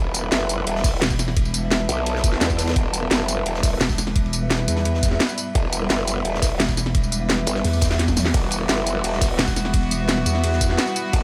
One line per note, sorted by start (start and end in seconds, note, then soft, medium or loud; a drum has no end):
0.00 0.31 E1 loud
0.00 11.23 G3 medium
0.00 11.23 B3 medium
0.00 11.23 E5 medium
0.00 0.79 B5 medium
0.14 closed hi-hat medium
0.14 ride medium
0.14 tambourine medium
0.23 0.91 E4 medium
0.23 0.91 B4 medium
0.23 0.91 E5 medium
0.32 0.65 F#1 loud
0.32 snare loud
0.32 closed hi-hat medium
0.32 ride loud
0.49 closed hi-hat medium
0.49 ride medium
0.49 tambourine medium
0.67 1.00 E1 loud
0.67 closed hi-hat medium
0.67 ride medium
0.76 3.58 A5 medium
0.76 snare medium
0.84 kick loud
0.84 snare medium
0.84 closed hi-hat medium
0.84 open hi-hat medium
0.84 tambourine medium
0.93 1.03 E4 medium
0.93 1.03 B4 medium
0.93 1.03 E5 loud
1.02 1.88 E1 loud
1.02 snare loud
1.02 closed hi-hat medium
1.02 ride medium
1.10 kick medium
1.10 snare soft
1.10 tambourine soft
1.19 snare medium
1.19 open hi-hat medium
1.19 ride medium
1.19 tambourine medium
1.28 snare soft
1.37 kick loud
1.37 closed hi-hat medium
1.37 ride medium
1.45 ride soft
1.45 tambourine soft
1.54 closed hi-hat medium
1.54 ride medium
1.54 tambourine medium
1.63 2.31 E4 medium
1.63 2.31 B4 medium
1.63 2.31 E5 medium
1.71 snare loud
1.71 closed hi-hat medium
1.71 ride loud
1.80 snare soft
1.89 2.40 B1 loud
1.89 closed hi-hat medium
1.89 ride medium
1.89 tambourine medium
2.06 closed hi-hat medium
2.06 ride loud
2.16 snare soft
2.24 kick loud
2.24 snare soft
2.24 closed hi-hat medium
2.24 ride medium
2.24 tambourine medium
2.32 2.42 E4 medium
2.32 2.42 B4 medium
2.32 2.42 E5 loud
2.32 snare soft
2.41 2.75 E2 loud
2.41 snare loud
2.41 closed hi-hat medium
2.41 ride medium
2.50 kick medium
2.50 ride soft
2.50 tambourine soft
2.58 snare loud
2.58 open hi-hat medium
2.58 ride medium
2.58 tambourine medium
2.67 snare loud
2.67 ride medium
2.76 3.10 E1 loud
2.76 kick loud
2.76 closed hi-hat medium
2.76 ride medium
2.94 closed hi-hat medium
2.94 ride medium
2.94 tambourine medium
3.02 3.70 E4 medium
3.02 3.70 B4 medium
3.02 3.70 E5 medium
3.11 3.45 F#1 loud
3.11 snare loud
3.11 closed hi-hat medium
3.11 ride loud
3.28 closed hi-hat medium
3.28 ride medium
3.28 tambourine medium
3.46 3.79 E1 loud
3.46 closed hi-hat medium
3.46 ride loud
3.54 6.37 B5 medium
3.54 snare medium
3.63 kick loud
3.63 snare soft
3.63 closed hi-hat loud
3.63 open hi-hat medium
3.63 tambourine medium
3.72 3.82 E4 medium
3.72 3.82 B4 medium
3.72 3.82 E5 loud
3.81 4.67 E1 loud
3.81 snare loud
3.81 closed hi-hat medium
3.81 ride medium
3.89 kick medium
3.89 snare medium
3.89 tambourine soft
3.98 snare soft
3.98 open hi-hat medium
3.98 ride medium
3.98 tambourine medium
4.07 snare soft
4.16 kick loud
4.16 closed hi-hat medium
4.16 ride medium
4.26 ride soft
4.33 closed hi-hat medium
4.33 ride medium
4.33 tambourine medium
4.42 5.10 E4 medium
4.42 5.10 B4 medium
4.42 5.10 E5 medium
4.50 snare loud
4.50 closed hi-hat medium
4.50 ride loud
4.59 snare soft
4.68 5.19 E2 loud
4.68 closed hi-hat loud
4.68 ride medium
4.68 tambourine medium
4.76 snare soft
4.85 closed hi-hat medium
4.85 ride medium
4.94 snare medium
5.03 kick loud
5.03 snare soft
5.03 closed hi-hat loud
5.03 ride medium
5.03 tambourine medium
5.12 5.21 E4 medium
5.12 5.21 B4 medium
5.12 5.21 E5 loud
5.12 snare soft
5.20 snare loud
5.20 closed hi-hat medium
5.20 ride medium
5.29 ride medium
5.29 tambourine soft
5.38 open hi-hat medium
5.38 ride medium
5.38 tambourine medium
5.55 5.89 E1 loud
5.55 kick loud
5.55 closed hi-hat medium
5.55 ride medium
5.73 closed hi-hat loud
5.73 ride medium
5.73 tambourine medium
5.81 6.49 E4 medium
5.81 6.49 B4 medium
5.81 6.49 E5 medium
5.90 6.24 F#1 loud
5.90 snare loud
5.90 closed hi-hat medium
5.90 ride loud
6.08 closed hi-hat medium
6.08 ride medium
6.08 tambourine medium
6.25 6.58 E1 loud
6.25 closed hi-hat medium
6.25 ride medium
6.34 9.16 D6 medium
6.34 snare medium
6.42 kick loud
6.42 snare medium
6.42 closed hi-hat loud
6.42 open hi-hat medium
6.42 tambourine medium
6.51 6.61 E4 loud
6.51 6.61 B4 medium
6.51 6.61 E5 loud
6.60 7.46 E1 medium
6.60 snare loud
6.60 closed hi-hat medium
6.60 ride medium
6.68 kick medium
6.68 snare medium
6.68 tambourine soft
6.77 snare soft
6.77 open hi-hat medium
6.77 ride medium
6.77 tambourine medium
6.86 snare soft
6.95 kick loud
6.95 closed hi-hat medium
6.95 ride medium
7.03 ride soft
7.03 tambourine soft
7.12 closed hi-hat loud
7.12 ride medium
7.12 tambourine medium
7.21 7.89 E4 medium
7.21 7.89 B4 medium
7.21 7.89 E5 medium
7.29 snare loud
7.29 closed hi-hat medium
7.29 ride medium
7.38 snare soft
7.47 7.63 G1 loud
7.47 closed hi-hat loud
7.47 ride medium
7.47 tambourine medium
7.55 snare soft
7.64 8.33 E2 medium
7.64 snare soft
7.64 closed hi-hat medium
7.64 open hi-hat medium
7.73 tambourine soft
7.81 kick loud
7.81 snare loud
7.81 closed hi-hat loud
7.81 ride medium
7.81 tambourine medium
7.90 8.00 E4 medium
7.90 8.00 B4 medium
7.90 8.00 E5 loud
7.90 snare loud
7.90 snare soft
7.90 ride medium
7.99 snare medium
7.99 closed hi-hat medium
7.99 ride medium
8.07 kick medium
8.07 snare soft
8.07 high tom medium
8.07 tambourine soft
8.16 snare soft
8.16 open hi-hat medium
8.16 mid tom medium
8.16 tambourine medium
8.26 snare medium
8.34 8.68 E1 loud
8.34 11.23 E3 medium
8.34 11.23 B3 medium
8.34 11.23 F#4 loud
8.34 kick loud
8.34 closed hi-hat medium
8.34 ride medium
8.34 ride bell medium
8.51 closed hi-hat loud
8.51 ride medium
8.51 tambourine medium
8.60 9.28 E4 medium
8.60 9.28 B4 medium
8.60 9.28 E5 medium
8.69 9.03 F#1 loud
8.69 snare loud
8.69 closed hi-hat medium
8.69 ride medium
8.69 ride bell medium
8.86 closed hi-hat loud
8.86 ride medium
8.86 tambourine medium
9.04 9.38 E1 loud
9.04 closed hi-hat medium
9.04 ride loud
9.04 ride bell medium
9.13 11.23 B5 medium
9.13 snare soft
9.21 kick loud
9.21 snare soft
9.21 closed hi-hat loud
9.21 open hi-hat medium
9.21 tambourine medium
9.30 9.40 E4 medium
9.30 9.40 B4 medium
9.30 9.40 E5 loud
9.38 10.25 E1 loud
9.38 snare loud
9.38 closed hi-hat medium
9.38 ride medium
9.38 ride bell medium
9.48 kick medium
9.48 snare medium
9.48 tambourine soft
9.56 snare medium
9.56 open hi-hat medium
9.56 ride medium
9.56 tambourine medium
9.65 snare soft
9.73 kick loud
9.73 closed hi-hat medium
9.73 ride medium
9.73 ride bell medium
9.83 ride soft
9.91 closed hi-hat loud
9.91 ride medium
9.91 tambourine medium
10.00 10.68 E4 medium
10.00 10.68 B4 medium
10.00 10.68 E5 medium
10.09 snare loud
10.09 closed hi-hat medium
10.09 ride loud
10.09 ride bell medium
10.17 snare soft
10.26 10.77 E2 loud
10.26 closed hi-hat medium
10.26 ride medium
10.26 tambourine medium
10.35 snare soft
10.44 closed hi-hat medium
10.44 ride medium
10.44 ride bell medium
10.52 snare soft
10.60 kick loud
10.60 snare soft
10.60 closed hi-hat loud
10.60 ride medium
10.60 tambourine medium
10.70 10.79 E4 medium
10.70 10.79 B4 medium
10.70 10.79 E5 loud
10.70 snare soft
10.78 snare loud
10.78 closed hi-hat medium
10.78 ride medium
10.78 ride bell medium
10.87 ride soft
10.87 tambourine soft
10.96 open hi-hat medium
10.96 ride medium
10.96 tambourine medium
11.13 11.23 E1 loud
11.13 kick loud
11.13 closed hi-hat medium
11.13 ride medium
11.13 ride bell medium